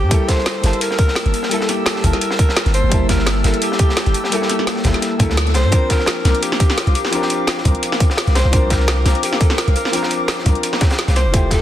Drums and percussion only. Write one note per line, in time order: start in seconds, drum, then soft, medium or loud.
0.11 kick loud
0.11 closed hi-hat medium
0.28 kick medium
0.28 snare medium
0.28 closed hi-hat medium
0.38 snare soft
0.46 snare loud
0.46 closed hi-hat medium
0.63 snare medium
0.63 closed hi-hat medium
0.73 closed hi-hat soft
0.81 closed hi-hat medium
0.91 snare soft
0.98 kick loud
0.98 closed hi-hat medium
1.08 snare soft
1.15 snare loud
1.15 closed hi-hat medium
1.26 closed hi-hat soft
1.34 closed hi-hat medium
1.43 snare medium
1.51 closed hi-hat medium
1.61 snare soft
1.69 snare soft
1.69 closed hi-hat medium
1.86 snare loud
1.86 closed hi-hat medium
1.96 snare medium
2.04 kick medium
2.04 closed hi-hat medium
2.13 snare soft
2.13 closed hi-hat soft
2.21 closed hi-hat medium
2.31 snare medium
2.39 kick loud
2.39 closed hi-hat medium
2.49 snare medium
2.56 snare loud
2.56 closed hi-hat medium
2.56 closed hi-hat loud
2.66 snare soft
2.66 closed hi-hat soft
2.74 closed hi-hat medium
2.92 kick loud
2.92 closed hi-hat loud
2.92 closed hi-hat medium
3.09 kick medium
3.09 snare medium
3.09 closed hi-hat medium
3.18 snare soft
3.26 snare loud
3.26 closed hi-hat medium
3.44 snare medium
3.44 closed hi-hat medium
3.54 closed hi-hat soft
3.62 closed hi-hat medium
3.72 snare soft
3.79 kick loud
3.79 closed hi-hat medium
3.89 snare soft
3.97 snare loud
3.97 closed hi-hat loud
3.97 closed hi-hat medium
4.06 closed hi-hat soft
4.14 closed hi-hat medium
4.24 snare soft
4.32 closed hi-hat medium
4.32 closed hi-hat loud
4.42 snare soft
4.50 snare soft
4.50 closed hi-hat medium
4.59 snare soft
4.67 snare loud
4.67 closed hi-hat loud
4.67 closed hi-hat medium
4.76 snare medium
4.84 kick medium
4.84 snare loud
4.84 closed hi-hat medium
4.94 snare soft
4.94 closed hi-hat soft
5.01 snare soft
5.01 closed hi-hat medium
5.19 kick loud
5.19 closed hi-hat medium
5.30 snare soft
5.37 snare medium
5.37 snare loud
5.37 closed hi-hat loud
5.37 closed hi-hat medium
5.47 snare soft
5.47 closed hi-hat soft
5.54 snare loud
5.54 closed hi-hat medium
5.72 kick loud
5.72 closed hi-hat medium
5.72 closed hi-hat loud
5.90 kick medium
5.90 snare medium
5.90 closed hi-hat medium
5.99 snare soft
6.06 snare loud
6.06 closed hi-hat loud
6.25 snare soft
6.25 closed hi-hat medium
6.35 closed hi-hat soft
6.42 closed hi-hat medium
6.52 snare soft
6.60 kick loud
6.60 closed hi-hat medium
6.69 snare soft
6.78 snare loud
6.78 closed hi-hat loud
6.78 closed hi-hat medium
6.87 closed hi-hat soft
6.95 closed hi-hat medium
7.05 snare soft
7.12 closed hi-hat medium
7.22 snare medium
7.30 closed hi-hat medium
7.47 snare loud
7.47 closed hi-hat medium
7.47 closed hi-hat loud
7.58 snare medium
7.65 kick medium
7.65 closed hi-hat medium
7.75 closed hi-hat soft
7.83 closed hi-hat medium
7.92 snare medium
7.92 snare soft
8.00 kick loud
8.00 closed hi-hat medium
8.10 snare medium
8.17 snare loud
8.17 closed hi-hat loud
8.17 closed hi-hat medium
8.27 snare soft
8.27 closed hi-hat soft
8.35 snare loud
8.35 snare soft
8.35 closed hi-hat medium
8.53 kick loud
8.53 closed hi-hat medium
8.70 kick medium
8.70 snare medium
8.70 closed hi-hat medium
8.79 snare soft
8.88 snare loud
8.88 closed hi-hat medium
9.06 snare medium
9.06 snare soft
9.06 closed hi-hat medium
9.15 closed hi-hat soft
9.23 closed hi-hat medium
9.33 snare soft
9.41 kick loud
9.41 closed hi-hat medium
9.50 snare soft
9.58 snare loud
9.58 closed hi-hat medium
9.68 closed hi-hat soft
9.76 closed hi-hat medium
9.85 snare medium
9.85 snare soft
9.93 closed hi-hat medium
10.03 snare medium
10.11 closed hi-hat medium
10.28 snare loud
10.28 closed hi-hat medium
10.28 closed hi-hat loud
10.38 snare medium
10.46 kick medium
10.46 closed hi-hat medium
10.55 closed hi-hat soft
10.63 closed hi-hat medium
10.73 snare medium
10.73 snare soft
10.81 kick loud
10.81 snare loud
10.81 closed hi-hat medium
10.90 snare loud
10.90 closed hi-hat medium
10.99 snare loud
10.99 closed hi-hat medium
11.08 snare loud
11.08 closed hi-hat soft
11.08 closed hi-hat medium
11.16 snare soft
11.16 closed hi-hat medium
11.34 kick loud
11.34 closed hi-hat medium
11.51 kick medium
11.51 snare medium
11.51 closed hi-hat medium